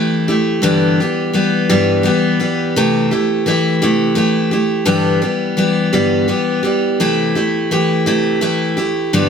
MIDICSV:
0, 0, Header, 1, 2, 480
1, 0, Start_track
1, 0, Tempo, 708383
1, 432, Time_signature, 6, 3, 24, 8
1, 6295, End_track
2, 0, Start_track
2, 0, Title_t, "Steel-string acoustic guitar"
2, 0, Program_c, 0, 25
2, 0, Note_on_c, 0, 52, 62
2, 0, Note_on_c, 0, 57, 57
2, 0, Note_on_c, 0, 64, 65
2, 0, Note_on_c, 0, 67, 73
2, 182, Note_off_c, 0, 67, 0
2, 188, Note_off_c, 0, 64, 0
2, 189, Note_off_c, 0, 52, 0
2, 190, Note_on_c, 0, 67, 52
2, 192, Note_off_c, 0, 57, 0
2, 197, Note_on_c, 0, 64, 50
2, 206, Note_on_c, 0, 57, 45
2, 418, Note_on_c, 0, 43, 69
2, 424, Note_off_c, 0, 67, 0
2, 425, Note_off_c, 0, 57, 0
2, 426, Note_on_c, 0, 50, 83
2, 427, Note_off_c, 0, 64, 0
2, 427, Note_on_c, 0, 55, 83
2, 430, Note_on_c, 0, 59, 81
2, 432, Note_on_c, 0, 52, 84
2, 432, Note_on_c, 0, 67, 78
2, 665, Note_off_c, 0, 43, 0
2, 669, Note_off_c, 0, 50, 0
2, 669, Note_off_c, 0, 55, 0
2, 671, Note_off_c, 0, 59, 0
2, 672, Note_off_c, 0, 52, 0
2, 672, Note_off_c, 0, 67, 0
2, 679, Note_on_c, 0, 67, 47
2, 683, Note_on_c, 0, 59, 47
2, 690, Note_on_c, 0, 52, 48
2, 691, Note_on_c, 0, 55, 49
2, 896, Note_off_c, 0, 52, 0
2, 901, Note_off_c, 0, 59, 0
2, 902, Note_off_c, 0, 55, 0
2, 904, Note_on_c, 0, 52, 57
2, 907, Note_off_c, 0, 67, 0
2, 909, Note_on_c, 0, 59, 64
2, 911, Note_on_c, 0, 55, 65
2, 915, Note_on_c, 0, 67, 69
2, 1140, Note_off_c, 0, 59, 0
2, 1140, Note_off_c, 0, 67, 0
2, 1142, Note_off_c, 0, 52, 0
2, 1143, Note_off_c, 0, 55, 0
2, 1148, Note_on_c, 0, 59, 70
2, 1149, Note_on_c, 0, 67, 73
2, 1150, Note_on_c, 0, 52, 66
2, 1151, Note_on_c, 0, 55, 66
2, 1155, Note_on_c, 0, 50, 65
2, 1159, Note_on_c, 0, 43, 58
2, 1369, Note_off_c, 0, 52, 0
2, 1374, Note_off_c, 0, 55, 0
2, 1377, Note_on_c, 0, 52, 61
2, 1382, Note_on_c, 0, 55, 54
2, 1383, Note_off_c, 0, 67, 0
2, 1384, Note_off_c, 0, 59, 0
2, 1391, Note_on_c, 0, 67, 69
2, 1392, Note_on_c, 0, 59, 70
2, 1393, Note_off_c, 0, 50, 0
2, 1395, Note_off_c, 0, 43, 0
2, 1615, Note_off_c, 0, 67, 0
2, 1618, Note_off_c, 0, 59, 0
2, 1623, Note_on_c, 0, 67, 52
2, 1624, Note_off_c, 0, 52, 0
2, 1624, Note_off_c, 0, 55, 0
2, 1626, Note_on_c, 0, 59, 52
2, 1632, Note_on_c, 0, 52, 43
2, 1632, Note_on_c, 0, 55, 46
2, 1865, Note_off_c, 0, 52, 0
2, 1867, Note_off_c, 0, 67, 0
2, 1868, Note_off_c, 0, 59, 0
2, 1871, Note_off_c, 0, 55, 0
2, 1872, Note_on_c, 0, 48, 75
2, 1873, Note_on_c, 0, 52, 76
2, 1877, Note_on_c, 0, 57, 82
2, 1879, Note_on_c, 0, 64, 83
2, 1881, Note_on_c, 0, 67, 85
2, 2101, Note_off_c, 0, 67, 0
2, 2109, Note_on_c, 0, 67, 50
2, 2110, Note_off_c, 0, 64, 0
2, 2111, Note_off_c, 0, 57, 0
2, 2112, Note_off_c, 0, 48, 0
2, 2112, Note_off_c, 0, 52, 0
2, 2118, Note_on_c, 0, 64, 53
2, 2119, Note_on_c, 0, 57, 42
2, 2342, Note_off_c, 0, 57, 0
2, 2344, Note_on_c, 0, 52, 59
2, 2347, Note_off_c, 0, 64, 0
2, 2350, Note_off_c, 0, 67, 0
2, 2350, Note_on_c, 0, 57, 65
2, 2355, Note_on_c, 0, 64, 72
2, 2358, Note_on_c, 0, 67, 72
2, 2579, Note_off_c, 0, 67, 0
2, 2583, Note_off_c, 0, 64, 0
2, 2587, Note_off_c, 0, 52, 0
2, 2587, Note_on_c, 0, 67, 70
2, 2589, Note_off_c, 0, 57, 0
2, 2591, Note_on_c, 0, 64, 69
2, 2597, Note_on_c, 0, 57, 61
2, 2598, Note_on_c, 0, 48, 61
2, 2602, Note_on_c, 0, 52, 65
2, 2805, Note_off_c, 0, 52, 0
2, 2810, Note_off_c, 0, 57, 0
2, 2813, Note_on_c, 0, 52, 63
2, 2817, Note_off_c, 0, 64, 0
2, 2818, Note_on_c, 0, 57, 65
2, 2824, Note_off_c, 0, 67, 0
2, 2826, Note_on_c, 0, 64, 55
2, 2832, Note_on_c, 0, 67, 67
2, 2834, Note_off_c, 0, 48, 0
2, 3049, Note_off_c, 0, 67, 0
2, 3057, Note_on_c, 0, 67, 49
2, 3061, Note_off_c, 0, 64, 0
2, 3062, Note_off_c, 0, 52, 0
2, 3064, Note_off_c, 0, 57, 0
2, 3069, Note_on_c, 0, 64, 50
2, 3072, Note_on_c, 0, 57, 41
2, 3289, Note_off_c, 0, 57, 0
2, 3289, Note_on_c, 0, 43, 74
2, 3290, Note_on_c, 0, 50, 72
2, 3291, Note_off_c, 0, 67, 0
2, 3291, Note_on_c, 0, 55, 83
2, 3293, Note_off_c, 0, 64, 0
2, 3293, Note_on_c, 0, 52, 75
2, 3295, Note_on_c, 0, 59, 82
2, 3299, Note_on_c, 0, 67, 84
2, 3527, Note_off_c, 0, 59, 0
2, 3527, Note_off_c, 0, 67, 0
2, 3530, Note_off_c, 0, 55, 0
2, 3535, Note_on_c, 0, 59, 52
2, 3535, Note_on_c, 0, 67, 49
2, 3537, Note_off_c, 0, 52, 0
2, 3538, Note_on_c, 0, 55, 48
2, 3540, Note_off_c, 0, 43, 0
2, 3540, Note_off_c, 0, 50, 0
2, 3545, Note_on_c, 0, 52, 42
2, 3765, Note_off_c, 0, 52, 0
2, 3770, Note_off_c, 0, 55, 0
2, 3773, Note_on_c, 0, 52, 64
2, 3774, Note_off_c, 0, 59, 0
2, 3776, Note_off_c, 0, 67, 0
2, 3778, Note_on_c, 0, 55, 61
2, 3782, Note_on_c, 0, 59, 64
2, 3784, Note_on_c, 0, 67, 71
2, 4008, Note_off_c, 0, 67, 0
2, 4010, Note_off_c, 0, 52, 0
2, 4011, Note_off_c, 0, 55, 0
2, 4015, Note_off_c, 0, 59, 0
2, 4016, Note_on_c, 0, 67, 64
2, 4018, Note_on_c, 0, 52, 61
2, 4020, Note_on_c, 0, 55, 67
2, 4023, Note_on_c, 0, 59, 78
2, 4025, Note_on_c, 0, 50, 62
2, 4026, Note_on_c, 0, 43, 58
2, 4246, Note_off_c, 0, 52, 0
2, 4250, Note_off_c, 0, 55, 0
2, 4254, Note_off_c, 0, 59, 0
2, 4254, Note_on_c, 0, 52, 56
2, 4256, Note_off_c, 0, 67, 0
2, 4258, Note_on_c, 0, 55, 61
2, 4262, Note_on_c, 0, 59, 65
2, 4264, Note_on_c, 0, 67, 61
2, 4268, Note_off_c, 0, 50, 0
2, 4269, Note_off_c, 0, 43, 0
2, 4483, Note_off_c, 0, 67, 0
2, 4491, Note_on_c, 0, 67, 54
2, 4494, Note_off_c, 0, 59, 0
2, 4495, Note_off_c, 0, 55, 0
2, 4499, Note_off_c, 0, 52, 0
2, 4502, Note_on_c, 0, 59, 52
2, 4504, Note_on_c, 0, 55, 46
2, 4507, Note_on_c, 0, 52, 41
2, 4738, Note_off_c, 0, 52, 0
2, 4741, Note_off_c, 0, 55, 0
2, 4742, Note_off_c, 0, 67, 0
2, 4742, Note_on_c, 0, 48, 73
2, 4744, Note_on_c, 0, 57, 73
2, 4746, Note_off_c, 0, 59, 0
2, 4747, Note_on_c, 0, 52, 73
2, 4748, Note_on_c, 0, 64, 84
2, 4752, Note_on_c, 0, 67, 81
2, 4974, Note_off_c, 0, 67, 0
2, 4981, Note_off_c, 0, 64, 0
2, 4982, Note_on_c, 0, 67, 56
2, 4987, Note_off_c, 0, 48, 0
2, 4988, Note_off_c, 0, 57, 0
2, 4989, Note_on_c, 0, 64, 50
2, 4990, Note_off_c, 0, 52, 0
2, 4997, Note_on_c, 0, 57, 41
2, 5221, Note_off_c, 0, 57, 0
2, 5224, Note_off_c, 0, 64, 0
2, 5225, Note_off_c, 0, 67, 0
2, 5225, Note_on_c, 0, 52, 66
2, 5229, Note_on_c, 0, 57, 68
2, 5232, Note_on_c, 0, 64, 62
2, 5233, Note_on_c, 0, 67, 70
2, 5454, Note_off_c, 0, 67, 0
2, 5460, Note_off_c, 0, 64, 0
2, 5461, Note_off_c, 0, 52, 0
2, 5461, Note_off_c, 0, 57, 0
2, 5463, Note_on_c, 0, 67, 72
2, 5468, Note_on_c, 0, 64, 71
2, 5469, Note_on_c, 0, 52, 64
2, 5469, Note_on_c, 0, 57, 68
2, 5474, Note_on_c, 0, 48, 57
2, 5692, Note_off_c, 0, 52, 0
2, 5694, Note_off_c, 0, 57, 0
2, 5699, Note_off_c, 0, 67, 0
2, 5700, Note_off_c, 0, 64, 0
2, 5700, Note_on_c, 0, 52, 62
2, 5702, Note_on_c, 0, 57, 62
2, 5707, Note_on_c, 0, 67, 69
2, 5709, Note_on_c, 0, 64, 71
2, 5714, Note_off_c, 0, 48, 0
2, 5933, Note_off_c, 0, 67, 0
2, 5940, Note_off_c, 0, 64, 0
2, 5941, Note_on_c, 0, 67, 54
2, 5947, Note_off_c, 0, 52, 0
2, 5948, Note_off_c, 0, 57, 0
2, 5948, Note_on_c, 0, 64, 53
2, 5958, Note_on_c, 0, 57, 46
2, 6188, Note_off_c, 0, 67, 0
2, 6188, Note_on_c, 0, 43, 77
2, 6190, Note_on_c, 0, 50, 81
2, 6191, Note_off_c, 0, 64, 0
2, 6192, Note_on_c, 0, 52, 71
2, 6193, Note_off_c, 0, 57, 0
2, 6195, Note_on_c, 0, 67, 83
2, 6196, Note_on_c, 0, 55, 83
2, 6196, Note_on_c, 0, 59, 90
2, 6295, Note_off_c, 0, 43, 0
2, 6295, Note_off_c, 0, 50, 0
2, 6295, Note_off_c, 0, 52, 0
2, 6295, Note_off_c, 0, 55, 0
2, 6295, Note_off_c, 0, 59, 0
2, 6295, Note_off_c, 0, 67, 0
2, 6295, End_track
0, 0, End_of_file